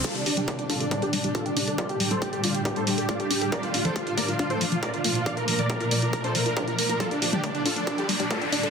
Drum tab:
HH |xxoxxxoxxxoxxxox|xxoxxxoxxxoxxxox|xxoxxxoxxxoxxxox|xxoxxxoxxxoxxxox|
T2 |----------------|----------------|----------------|----------------|
BD |o---o-o-o---o---|o---o---o---o---|o---o-o-o---o---|o---o---o---o---|

HH |xxoxxxoxxxoxxxox|
T2 |---o------------|
BD |o---o---o---o---|